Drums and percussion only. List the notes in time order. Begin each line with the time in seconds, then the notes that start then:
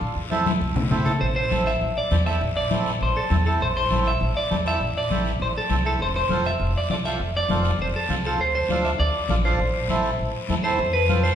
0.01 high conga, long guiro
0.32 high conga, short guiro
0.46 high conga, short guiro
0.61 high conga, long guiro
0.76 low conga
0.91 low conga, short guiro
1.06 low conga, short guiro
1.21 high conga, long guiro
1.51 high conga, short guiro
1.66 short guiro
1.81 high conga, long guiro
2.11 high conga, short guiro
2.26 short guiro
2.41 high conga, long guiro
2.71 high conga, short guiro
2.86 short guiro
3.01 high conga, long guiro
3.31 high conga, short guiro
3.45 short guiro
3.60 high conga, long guiro
3.91 high conga, short guiro
4.05 short guiro
4.20 high conga, long guiro
4.51 high conga, short guiro
4.66 short guiro
4.81 high conga, long guiro
5.11 high conga, short guiro
5.25 short guiro
5.40 high conga, long guiro
5.70 high conga, short guiro
5.85 short guiro
6.00 high conga, long guiro
6.30 high conga, short guiro
6.45 short guiro
6.60 high conga, long guiro
6.90 high conga, short guiro
7.05 short guiro
7.20 high conga, long guiro
7.50 high conga, short guiro
7.64 short guiro
7.80 high conga, long guiro
8.10 high conga, short guiro
8.25 short guiro
8.39 high conga, long guiro
8.69 high conga, short guiro
8.85 short guiro
9.00 high conga, long guiro
9.30 high conga, short guiro
9.44 short guiro
9.59 high conga, long guiro
9.89 high conga, short guiro
10.04 short guiro
10.19 high conga, long guiro
10.49 high conga, short guiro
10.64 short guiro
10.79 high conga, long guiro
11.09 high conga, short guiro
11.24 short guiro